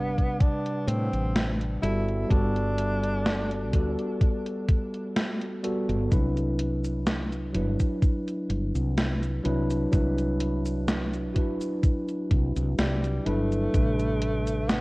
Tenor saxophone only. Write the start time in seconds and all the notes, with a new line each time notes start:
Already playing: B3
0.40 D4
0.88 C4
1.83 E4
2.31 D4
12.79 G3
13.26 A3
14.69 B3